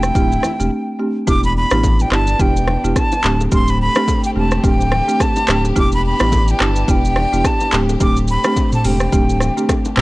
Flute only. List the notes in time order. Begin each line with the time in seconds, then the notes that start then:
Already playing: G5
1.29 D6
1.45 B5
1.57 B5
2.02 G5
2.13 A5
2.41 G5
2.98 A5
3.54 C6
3.70 B5
3.82 B5
4.26 G5
4.38 A5
4.66 G5
5.22 A5
5.78 D6
5.94 B5
6.06 B5
6.51 G5
6.63 A5
6.90 G5
7.47 A5
8.02 D6
8.31 B5
8.74 A5
8.86 G5